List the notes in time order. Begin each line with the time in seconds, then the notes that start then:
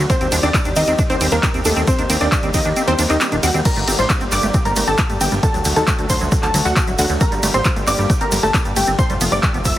0.10 D#3 G3 C4 G4 C5, kick, closed hi-hat, shaker
0.21 D#2 C4, closed hi-hat, shaker
0.32 D#2 D4, open hi-hat, ride, shaker
0.43 D#2 C4 D4 D5, closed hi-hat, shaker
0.54 C4, kick, clap, closed hi-hat, shaker
0.64 D#2 D4, closed hi-hat, shaker
0.76 D#2 C4 D#4 D#5, open hi-hat, ride, shaker
0.87 D#2 C4, closed hi-hat, shaker
0.98 D4, kick, closed hi-hat, shaker
1.10 D#2 C4 C5, closed hi-hat, shaker
1.21 D#2 C4, open hi-hat, ride, shaker
1.31 D#2 A#3 D4 A#4, closed hi-hat, shaker
1.43 C4, kick, clap, closed hi-hat, shaker
1.54 D#2 C4, closed hi-hat, shaker
1.65 D#2 A3 D4 A4, open hi-hat, ride, shaker
1.76 D#2 C4, closed hi-hat, shaker
1.87 A#3 C4 C5, kick, closed hi-hat, shaker
1.99 D#2 D4, closed hi-hat, shaker
2.10 D#2 C4, open hi-hat, ride, shaker
2.20 D#2 C4 D4 D5, closed hi-hat, shaker
2.32 D4, kick, clap, closed hi-hat, shaker
2.43 D#2 C4, closed hi-hat, shaker
2.54 D#2 C4 D#4 D#5, kick, open hi-hat, ride, shaker
2.65 D#2 D4, closed hi-hat, shaker
2.76 C4, closed hi-hat, shaker
2.87 D#2 C4 C5, closed hi-hat, shaker
2.99 D#2 D4, open hi-hat, ride, shaker
3.10 D#2 C4 D#4 D#5, clap, closed hi-hat, shaker
3.20 C4, clap, closed hi-hat, shaker
3.32 D#1 D4, closed hi-hat, shaker
3.43 D#2 C4 F#4 F#5, open hi-hat, ride, shaker
3.54 D#2 C4, closed hi-hat, shaker
3.65 D3 G3 A#3 G4 A#4 A#5, kick, closed hi-hat, crash, shaker
3.76 G1 A3, closed hi-hat, shaker
3.88 G1 C4, open hi-hat, ride, shaker
3.99 A1 G3 C5 C6, closed hi-hat, shaker
4.10 A3, kick, clap, closed hi-hat, shaker
4.20 G1 C4, closed hi-hat, shaker
4.32 G1 G3 D5 D6, clap, open hi-hat, ride, shaker
4.43 G1 A3, shaker
4.54 C4, kick, closed hi-hat, shaker
4.65 G1 G3 A#4 A#5, closed hi-hat, shaker
4.76 G1 A3, open hi-hat, ride, shaker
4.87 G1 C4 A4 A5, closed hi-hat, shaker
4.98 G3, kick, clap, closed hi-hat, shaker
5.10 G2 A3, closed hi-hat, shaker
5.21 G1 C4 G4 G5, open hi-hat, ride, shaker
5.32 G1 G3, closed hi-hat, shaker
5.43 D3 F#3 A3 F#4 A4 A5, kick, closed hi-hat, shaker
5.54 D2 F#3, closed hi-hat, shaker
5.65 D2 D3, open hi-hat, ride, shaker
5.76 D#2 D3 A4 A5, closed hi-hat, shaker
5.87 F#3, kick, clap, closed hi-hat, shaker
5.99 D2 D3, closed hi-hat, shaker
6.10 D2 D3 C5 C6, kick, open hi-hat, ride, shaker
6.21 D2 F#3, closed hi-hat, shaker
6.32 D3, kick, closed hi-hat, shaker
6.43 D2 D3 A4 A5, clap, closed hi-hat, shaker
6.54 D2 F#3, open hi-hat, ride, shaker
6.65 D2 D3 F#4 F#5, closed hi-hat, shaker
6.76 D3, kick, clap, closed hi-hat, shaker
6.87 D1 F#3, closed hi-hat, shaker
6.98 D2 D3 F#4 F#5, open hi-hat, ride, shaker
7.09 D2 D3, closed hi-hat, shaker
7.20 G3 A#3 C4 G4 A#4 A#5, kick, closed hi-hat, shaker
7.32 G1 G3, closed hi-hat, shaker
7.43 G1 A3, open hi-hat, ride, shaker
7.54 A1 C4 C5 C6, closed hi-hat, shaker
7.65 G3, kick, clap, closed hi-hat, shaker
7.76 G1 A3, closed hi-hat, shaker
7.87 G1 C4 D5 D6, clap, open hi-hat, ride, shaker
7.99 G1 G3, closed hi-hat, shaker
8.10 A3, kick, closed hi-hat, shaker
8.21 G1 C4 A#4 A#5, closed hi-hat, shaker
8.32 G1 G3, open hi-hat, ride, shaker
8.43 G1 A3 A4 A5, closed hi-hat, shaker
8.54 C4, kick, clap, closed hi-hat, shaker
8.65 G2 G3, closed hi-hat, shaker
8.76 G1 A3 G4 G5, open hi-hat, ride, shaker
8.87 G1 C4, closed hi-hat, shaker
8.99 C3 F3 A3 F4 C5 C6, kick, closed hi-hat, shaker
9.10 F1 G3, closed hi-hat, shaker
9.21 F1 B3, open hi-hat, ride, shaker
9.32 G1 F3 D5 D6, closed hi-hat, shaker
9.43 G3, kick, clap, closed hi-hat, shaker
9.54 F1 B3, closed hi-hat, shaker
9.65 F1 F3 E5 E6, kick, open hi-hat, ride, shaker